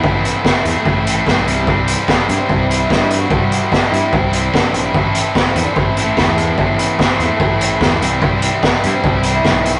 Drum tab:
HH |-x-x-x-x|-x-x-x-x|-x-x-x-x|-x-x-x-x|
SD |--o---o-|--o---o-|--o---o-|--o---o-|
BD |o-o-o-o-|o-o-o-o-|o-o-o-o-|o-o-o-o-|

HH |-x-x-x-x|-x-x-x-x|
SD |--o---o-|--o---o-|
BD |o-o-o-o-|o-o-o-o-|